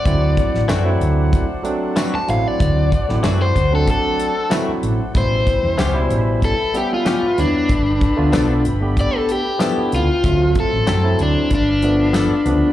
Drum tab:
HH |x-x-x-x-x-x-x-x-|x-x-x-x-x-x-x-x-|x-x-x-x-x-x-x-x-|x-x-x-x-x-x-x-x-|
TB |----x-------x---|----x-------x---|----x-------x---|----x-------x---|
SD |---oo-------o---|---oo-------o---|----o-------o---|----o-------o---|
BD |o-o-----o-------|o-o---o-o-------|o-o-----o-------|o-o-----o-------|

HH |x-x-x-x-x-x-x-x-|
TB |----x-------x---|
SD |----o-------o---|
BD |o-o-----o-------|